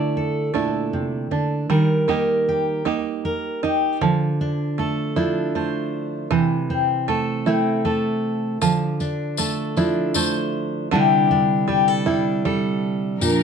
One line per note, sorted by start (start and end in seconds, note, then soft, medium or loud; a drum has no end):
0.00 0.54 D3 medium
0.00 1.69 D3 medium
0.00 0.52 A3 soft
0.00 0.53 D4 soft
0.00 0.54 E4 soft
0.00 1.65 D5 soft
0.17 1.66 A4 soft
0.54 0.93 A#2 soft
0.54 1.77 A3 soft
0.54 1.30 D4 soft
0.54 1.78 E4 soft
0.93 1.31 C3 soft
1.31 1.69 D3 soft
1.31 1.78 D4 soft
1.70 2.85 D#3 medium
1.70 4.01 G3 medium
1.70 2.07 A#4 soft
2.08 2.84 A#3 soft
2.08 2.84 D#4 soft
2.08 2.85 G4 medium
2.08 3.24 A#4 soft
2.49 3.63 G4 soft
2.85 4.08 A#3 soft
2.85 3.62 D#4 soft
2.85 4.09 G4 medium
2.85 muted steel-string acoustic guitar stroke soft
3.25 3.63 A#4 medium
3.63 4.09 D#4 soft
3.63 4.02 G4 soft
4.01 6.27 D3 medium
4.01 6.30 F3 medium
4.41 5.16 D4 soft
4.78 5.55 A3 soft
4.78 5.55 A4 soft
5.16 6.31 F3 medium
5.16 6.27 D4 soft
5.16 6.56 E4 medium
5.55 6.95 A3 soft
5.55 6.27 C5 soft
6.31 8.61 C3 medium
6.31 8.61 E3 medium
6.70 7.46 C4 soft
7.08 7.84 A3 medium
7.08 7.84 A4 soft
7.46 8.57 A3 medium
7.46 8.58 C4 soft
7.46 8.86 E4 medium
7.85 8.69 A3 soft
7.85 8.57 A4 medium
8.61 10.87 D3 medium
8.61 10.91 F3 medium
8.61 tambourine medium
9.00 9.77 D4 soft
9.00 tambourine soft
9.37 10.14 A3 medium
9.37 10.15 A4 medium
9.37 tambourine medium
9.77 10.92 F3 medium
9.77 10.93 D4 medium
9.77 11.00 E4 medium
9.77 tambourine soft
10.14 10.99 A3 medium
10.14 10.87 C5 medium
10.14 tambourine medium
10.91 13.22 C3 medium
10.91 13.21 D3 medium
10.91 12.05 G3 medium
10.91 11.30 D4 medium
10.91 13.18 E4 medium
10.91 11.67 G4 medium
11.31 12.06 D4 medium
11.68 12.44 G3 medium
11.68 11.88 G4 medium
11.88 12.44 A4 soft
12.06 13.17 G3 medium
12.06 13.17 D4 medium
12.06 13.29 E4 medium
12.45 13.29 G3 medium
12.45 13.17 A4 medium
13.21 13.43 A#2 medium
13.21 13.43 F3 medium
13.21 13.43 D4 medium
13.21 13.43 A#4 medium
13.21 tambourine medium